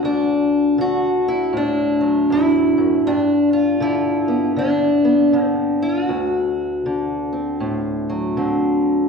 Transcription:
steel-string acoustic guitar
Already playing: D3
0.03 D2 D4
0.78 D3 F#4
1.28 E4
1.53 A2
1.57 D4
2.01 F#3
2.30 E2 E4
2.78 F#2
3.07 G2 D4
3.53 F4
3.80 D3 E4
4.28 B3
4.57 D3 D4
5.05 B3
5.33 D3 B3
5.44 C4
5.82 F4
6.02 F#4
6.09 D2
6.86 D3
7.33 C4
7.60 A2
8.09 F#3
8.37 D3 C4

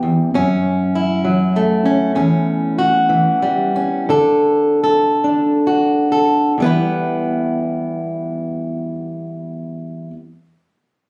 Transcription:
steel-string acoustic guitar
Already playing: E3 B3 G4
0.03 E2
0.34 F#2 C#4
0.95 E4
1.25 F#3
1.56 A3
1.86 C#4
2.15 E2 C#4
2.79 F#4
3.09 E3
3.43 G3
3.76 C#4
4.09 D3 A4
4.84 A4
5.24 D4
5.67 F#4
6.12 A4
6.58 E2 G3
6.62 B3 E4 B4

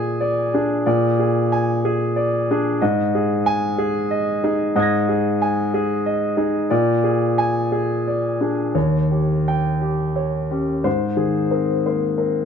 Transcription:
grand piano
Already playing: A#2 G#4 D5 G#5
0.21 D5
0.54 D4 G#4
0.86 A#2 D5
1.19 G#4
1.52 G#5
1.85 G#4
2.16 D5
2.51 D4 G#4
2.81 G#2 D#5
3.15 G#4
3.46 G#5
3.78 G#4
4.11 D#5
4.44 D#4 G#4
4.76 G#2 D#5 D#6
4.80 G#6 A#6
5.09 G#4
5.42 G#5
5.74 G#4
6.06 D#5
6.37 D#4 G#4
6.70 A#2 D5
7.04 G#4
7.38 G#5
7.72 G#4
8.08 D5
8.41 D4 G#4
8.75 D#2 C#5
9.11 G4
9.48 G5
9.81 G4
10.16 C#5
10.51 C#4 G4
10.84 G#2 C5
11.16 D#3 G#4
11.51 C4 A#4
11.86 A#3 C5
12.18 C4 A#4

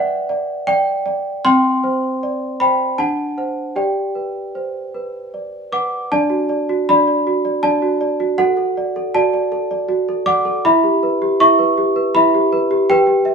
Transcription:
celesta
Already playing: B4 D5 E5 F#5 G5
0.29 D5
0.67 D5 G5
1.06 D5
1.45 C4 G5 C6
1.84 C5
2.23 D5
2.60 C5 G5 B5
2.98 D4 F#5 A5
3.38 C5 F#5
3.76 G4 D5 G5
4.15 B4
4.55 C5
4.94 B4
5.34 D5
5.72 B4 F#5 D6
6.12 D4 D5 A5
6.30 F#4
6.49 D5
6.69 F#4
6.89 D4 D5 B5
7.07 D5
7.27 F#4
7.45 D5
7.63 D4 D5 A5
7.82 F#4
8.01 D5
8.20 F#4
8.38 F#4 A4 F#5
8.57 A4
8.77 D5
8.96 A4
9.15 F#4 D5 A5
9.34 D5
9.52 A4
9.71 D5
9.89 F#4
10.09 A4
10.26 D5 F#5 D6
10.45 A4
10.65 E4 E5 B5
10.84 G4
11.03 B4
11.22 G4
11.40 E4 E5 C#6
11.59 B4
11.78 G4
11.96 B4
12.15 E4 E5 B5
12.34 G4
12.53 B4
12.71 G4
12.90 G4 B4 G5
13.07 G4
13.25 E5

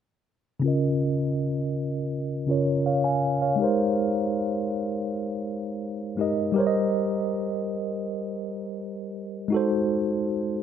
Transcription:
tine electric piano
0.60 C#3 C#4
0.64 F4 A#4 D#5
2.47 C#3 C#4 F4 A#4
2.51 C#5
2.86 C#5 F5
3.04 F5 G#5
3.42 C#5 F5
3.56 G#3 D#4 G4
3.62 A#4 C5
6.17 G#3 D#4 G4 A#4 D#5
6.52 G3 G4
6.56 A#4 C5 C#5
6.67 D#5
9.48 G#3 D#4
9.52 F#4 A4
9.56 C5

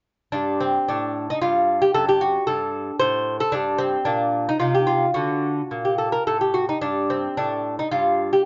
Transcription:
lute
0.32 G2 D4
0.60 C4
0.88 A2 D4
1.30 D#4
1.42 G2 F4
1.82 G4
1.94 F#2 D4 A4
2.09 G4
2.21 F#4
2.47 G2 A4
3.00 A2 C5
3.40 A4
3.52 G2 D4
3.78 C4
4.05 A#2 D4
4.49 D#4
4.60 C3 D#4 F4
4.75 G4
4.87 F4
5.14 D3 D4 F#4
5.71 A#2
5.85 G4
5.98 A4
6.12 A#4
6.27 A2 A4
6.41 G4
6.54 F#4
6.69 D#4
6.81 G2 D4
7.10 C4
7.37 A2 D4
7.79 D#4
7.91 G2 F4
8.33 G4

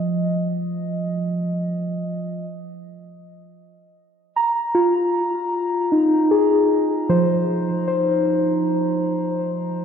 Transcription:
synth keys
Already playing: F3 D#5
4.36 A#5
4.75 F4
5.92 D#4
6.31 G#4
7.09 F3 C5
7.88 C5

